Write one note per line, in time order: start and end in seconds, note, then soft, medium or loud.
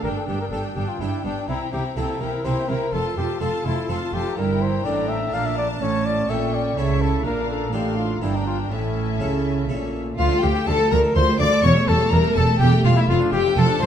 0.03 0.12 G1 soft
0.03 0.12 G2 soft
0.03 0.26 G2 soft
0.03 0.27 D4 soft
0.03 0.09 A#4 medium
0.03 0.25 G5 soft
0.03 0.27 G5 soft
0.16 0.27 A4 soft
0.27 0.36 G1 soft
0.27 0.36 G2 soft
0.27 0.50 G2 soft
0.27 0.51 D4 soft
0.27 0.40 G4 medium
0.27 0.50 G5 soft
0.27 0.51 G5 soft
0.41 0.46 A#4 medium
0.51 0.59 G1 soft
0.51 0.60 G2 soft
0.51 0.74 G2 soft
0.51 0.75 D4 soft
0.51 0.88 D4 soft
0.51 0.88 G4 soft
0.51 0.62 A4 medium
0.51 0.74 G5 soft
0.51 0.76 G5 soft
0.76 0.84 G1 soft
0.76 0.84 G2 soft
0.76 0.99 G2 soft
0.76 0.99 D4 soft
0.76 0.90 G4 medium
0.76 0.99 G5 soft
0.76 1.00 G5 soft
0.88 1.02 F4 medium
1.00 1.08 G1 soft
1.00 1.09 G2 soft
1.00 1.23 G2 soft
1.00 1.23 D4 soft
1.00 1.36 D4 soft
1.00 1.24 E4 medium
1.00 1.36 G4 soft
1.00 1.23 G5 soft
1.00 1.24 G5 soft
1.24 1.32 G1 soft
1.24 1.32 G2 soft
1.24 1.46 G2 soft
1.24 1.48 D4 medium
1.24 1.48 D4 soft
1.24 1.48 G5 soft
1.48 1.56 C2 soft
1.48 1.57 C3 soft
1.48 1.70 C3 soft
1.48 1.59 E4 medium
1.48 1.72 E4 soft
1.48 1.71 G5 soft
1.48 1.72 A#5 soft
1.73 1.81 C2 soft
1.73 1.81 C3 soft
1.73 1.95 C3 soft
1.73 1.96 E4 soft
1.73 1.84 G4 medium
1.73 1.96 G5 soft
1.73 1.96 A#5 soft
1.96 2.04 C2 soft
1.96 2.18 C3 soft
1.96 2.05 C3 soft
1.96 2.31 A#3 soft
1.96 2.32 C4 soft
1.96 2.20 E4 soft
1.96 2.32 G4 soft
1.96 2.23 A4 medium
1.96 2.20 G5 soft
1.96 2.20 A#5 soft
2.21 2.29 C2 soft
2.21 2.29 C3 soft
2.21 2.43 C3 soft
2.21 2.44 E4 soft
2.21 2.46 A#4 medium
2.21 2.43 G5 soft
2.21 2.44 A#5 soft
2.44 2.53 C2 medium
2.44 2.66 C3 soft
2.44 2.53 C3 soft
2.44 2.79 A#3 soft
2.44 2.80 C4 soft
2.44 2.68 E4 soft
2.44 2.80 G4 soft
2.44 2.70 C5 medium
2.44 2.68 G5 medium
2.44 2.68 A#5 soft
2.69 2.77 C2 soft
2.69 2.90 C3 soft
2.69 2.77 C3 soft
2.69 2.93 E4 soft
2.69 2.94 A#4 medium
2.69 2.92 G5 soft
2.69 2.92 A#5 soft
2.92 3.01 F1 medium
2.92 3.15 F2 soft
2.92 3.01 F2 medium
2.92 3.16 F4 medium
2.92 3.17 A4 medium
2.92 3.16 A5 soft
2.92 3.15 C6 soft
3.17 3.25 F1 soft
3.17 3.38 F2 soft
3.17 3.25 F2 soft
3.17 3.41 F4 soft
3.17 3.40 G4 medium
3.17 3.40 A5 soft
3.17 3.39 C6 soft
3.40 3.49 F1 soft
3.40 3.63 F2 soft
3.40 3.49 F2 medium
3.40 3.75 A3 soft
3.40 3.76 C4 soft
3.40 3.76 F4 soft
3.40 3.65 F4 soft
3.40 3.67 A4 medium
3.40 3.65 A5 medium
3.40 3.64 C6 soft
3.65 3.73 F1 soft
3.65 3.87 F2 soft
3.65 3.73 F2 soft
3.65 3.91 E4 medium
3.65 3.89 F4 soft
3.65 3.88 A5 soft
3.65 3.88 C6 soft
3.89 3.97 F1 medium
3.89 3.97 F2 soft
3.89 4.11 F2 soft
3.89 4.24 A3 soft
3.89 4.24 C4 soft
3.89 4.24 F4 soft
3.89 4.13 F4 soft
3.89 4.15 F4 medium
3.89 4.13 A5 soft
3.89 4.11 C6 soft
4.12 4.21 F1 medium
4.12 4.35 F2 soft
4.12 4.22 F2 soft
4.12 4.37 F4 soft
4.12 4.37 G4 medium
4.12 4.37 A5 soft
4.12 4.36 C6 soft
4.37 4.82 G1 medium
4.37 4.82 G2 medium
4.37 4.81 G2 soft
4.37 4.82 E4 medium
4.37 4.63 A#4 medium
4.37 5.29 G5 soft
4.37 5.77 A#5 medium
4.62 4.86 C5 medium
4.85 5.32 A1 medium
4.85 5.32 A2 medium
4.85 5.29 A2 soft
4.85 5.20 A#3 soft
4.85 5.32 D4 medium
4.85 5.20 D4 soft
4.85 5.10 D5 medium
5.09 5.35 E5 medium
5.33 5.80 A#1 medium
5.33 5.77 A#2 soft
5.33 5.80 A#2 medium
5.33 5.68 A#3 soft
5.33 5.80 D4 medium
5.33 5.68 D4 soft
5.33 5.47 F5 medium
5.33 6.29 A5 medium
5.46 5.57 E5 medium
5.58 5.68 D5 medium
5.81 6.28 A1 medium
5.81 6.25 A2 soft
5.81 6.28 A2 medium
5.81 6.28 C#4 medium
5.81 6.07 C#5 medium
5.81 6.28 A5 medium
6.05 6.31 D5 medium
6.28 6.76 A#1 medium
6.28 6.76 A#2 medium
6.28 6.73 A#2 soft
6.28 6.64 A3 soft
6.28 6.76 C#4 soft
6.28 6.64 A4 soft
6.28 6.56 E5 medium
6.28 6.77 G5 medium
6.28 6.77 C#6 soft
6.54 6.79 D5 medium
6.76 7.24 C#2 medium
6.76 7.24 C#3 medium
6.76 7.21 C#3 soft
6.76 7.12 A3 soft
6.76 7.25 E4 medium
6.76 7.12 A4 soft
6.76 7.03 C#5 medium
6.76 7.24 E5 medium
6.76 7.25 A5 soft
7.02 7.24 A4 medium
7.24 7.72 A#1 medium
7.24 7.72 A#2 medium
7.24 7.69 A#2 soft
7.24 7.72 D4 medium
7.24 7.49 A#4 medium
7.24 7.72 F5 soft
7.24 7.73 A#5 soft
7.49 7.73 A4 medium
7.73 8.22 A1 soft
7.73 8.18 A2 soft
7.73 8.22 A2 medium
7.73 8.08 A#3 soft
7.73 8.20 D4 soft
7.73 8.08 D4 soft
7.73 8.09 F4 soft
7.73 7.97 G4 medium
7.73 8.21 F5 soft
7.73 8.22 C6 soft
7.98 8.24 F4 medium
8.21 8.70 G1 medium
8.21 8.70 G2 soft
8.21 8.67 G2 soft
8.21 8.67 A#3 soft
8.21 8.70 D4 soft
8.21 8.68 D4 soft
8.21 8.37 E4 medium
8.21 8.68 G4 soft
8.21 8.71 G5 medium
8.21 8.70 A#5 soft
8.35 8.46 D4 medium
8.47 8.58 F4 medium
8.71 9.19 A1 soft
8.71 9.19 A2 medium
8.71 9.17 A2 soft
8.71 9.98 C#4 medium
8.71 9.68 E4 medium
8.71 9.98 E5 soft
8.71 9.98 A5 soft
9.20 9.69 C#2 soft
9.20 9.65 C#3 soft
9.20 9.70 C#3 medium
9.20 9.55 A3 soft
9.20 9.56 C#4 soft
9.20 9.56 E4 soft
9.69 10.18 A#1 soft
9.69 10.14 A#2 soft
9.69 10.19 A#2 medium
9.69 10.04 A3 soft
9.69 10.05 C#4 soft
9.69 10.05 E4 soft
10.18 10.26 D2 medium
10.18 10.40 D2 medium
10.18 10.27 D2 medium
10.18 10.30 F3 medium
10.18 10.41 F4 medium
10.18 10.45 F4 medium
10.18 10.41 F5 loud
10.31 10.43 A3 medium
10.31 10.44 A4 medium
10.43 10.51 D2 medium
10.43 10.65 D2 medium
10.43 10.55 F3 medium
10.43 10.56 F4 medium
10.43 10.67 G4 medium
10.43 10.69 G4 medium
10.43 10.67 G5 medium
10.55 10.67 A3 medium
10.55 10.67 E4 soft
10.67 10.75 D2 medium
10.67 10.89 D2 medium
10.67 10.76 D2 medium
10.67 10.79 F3 medium
10.67 10.80 F4 medium
10.67 10.91 A4 medium
10.67 10.93 A4 medium
10.67 10.91 A5 medium
10.79 10.91 A3 medium
10.79 10.92 A4 medium
10.91 10.99 D2 medium
10.91 11.13 D2 medium
10.91 11.04 F3 medium
10.91 11.04 G4 soft
10.91 11.00 A#4 medium
10.91 11.15 A#4 medium
10.91 10.99 A#5 loud
11.04 11.16 A3 medium
11.04 11.16 A4 medium
11.15 11.24 D2 medium
11.15 11.37 D2 medium
11.15 11.24 D2 medium
11.15 11.27 F3 medium
11.15 11.28 F4 medium
11.15 11.39 C5 medium
11.15 11.39 C6 loud
11.28 11.40 A3 medium
11.28 11.40 G4 soft
11.39 11.48 D2 medium
11.39 11.61 D2 medium
11.39 11.48 D2 medium
11.39 11.52 F3 medium
11.39 11.52 F4 medium
11.39 11.63 D5 medium
11.39 11.66 D5 medium
11.39 11.63 D6 loud
11.51 11.64 A3 medium
11.51 11.64 A4 soft
11.63 11.72 E1 medium
11.63 11.72 E2 medium
11.63 11.86 E2 medium
11.63 11.75 G3 medium
11.63 11.90 C#5 medium
11.63 11.88 C#5 medium
11.63 11.71 C#6 medium
11.76 11.88 A3 medium
11.76 11.89 E5 medium
11.88 11.96 E1 medium
11.88 12.10 E2 medium
11.88 11.96 E2 medium
11.88 12.00 G3 medium
11.88 12.01 G4 medium
11.88 12.12 A4 medium
11.88 12.11 A4 medium
11.88 12.11 A5 loud
12.00 12.12 A3 medium
12.00 12.12 F4 soft
12.11 12.20 E1 medium
12.11 12.33 E2 medium
12.11 12.21 E2 medium
12.11 12.24 G3 medium
12.11 12.24 G4 medium
12.11 12.36 A#4 medium
12.11 12.36 A#5 loud
12.24 12.36 A3 medium
12.24 12.37 E5 medium
12.35 12.44 E1 medium
12.35 12.58 E2 medium
12.35 12.45 E2 medium
12.35 12.48 G3 medium
12.35 12.60 A4 medium
12.35 12.47 A4 medium
12.35 12.48 D5 soft
12.35 12.60 A5 loud
12.48 12.60 A3 medium
12.48 12.61 E5 medium
12.60 12.68 E1 medium
12.60 12.82 E2 medium
12.60 12.69 E2 medium
12.60 12.72 G3 medium
12.60 12.71 G4 medium
12.60 12.84 G4 medium
12.60 12.73 A4 medium
12.60 12.84 G5 loud
12.72 12.84 A3 medium
12.72 12.84 A#4 soft
12.84 12.92 E1 medium
12.84 13.06 E2 medium
12.84 12.94 E2 medium
12.84 12.96 G3 medium
12.84 12.89 F4 medium
12.84 12.96 F4 medium
12.84 12.97 A4 medium
12.84 12.97 F5 loud
12.96 13.09 A3 medium
12.96 13.02 E4 medium
12.96 13.09 E4 medium
12.96 13.09 E5 soft
12.96 13.10 E5 medium
13.08 13.16 F1 medium
13.08 13.30 F2 medium
13.08 13.17 F2 medium
13.08 13.19 F4 medium
13.08 13.32 F4 medium
13.08 13.18 F4 medium
13.08 13.18 F5 loud
13.20 13.33 D4 medium
13.20 13.33 D5 medium
13.32 13.40 F1 medium
13.32 13.54 F2 medium
13.32 13.41 F2 medium
13.32 13.44 F4 medium
13.32 13.46 F4 medium
13.32 13.43 G4 medium
13.32 13.57 G4 medium
13.32 13.57 G5 medium
13.44 13.56 D4 medium
13.44 13.57 E4 soft
13.56 13.65 F1 medium
13.56 13.65 F2 medium
13.56 13.79 F2 medium
13.56 13.68 F4 medium
13.56 13.70 F4 medium
13.56 13.67 A4 medium
13.56 13.81 A4 medium
13.56 13.81 A5 loud
13.67 13.80 D4 medium
13.67 13.82 D5 medium
13.80 13.86 F1 medium
13.80 13.86 F2 medium
13.80 13.86 F4 medium
13.80 13.86 C5 medium
13.80 13.86 C5 soft
13.80 13.86 C6 loud